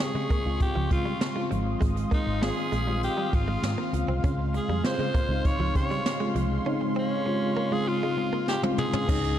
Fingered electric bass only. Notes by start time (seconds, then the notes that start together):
0.14 C#3
0.45 C#2
0.76 C#2
0.91 C#3
1.52 G#1
1.82 G#1
2.27 G#1
2.72 A#1
3.33 G#1
3.63 G#2
3.93 C#2
4.08 C2
4.23 C#2
4.69 F2
4.99 C#3
5.29 C#2
5.59 C#2
5.75 C#3
6.35 C2
9.08 C#2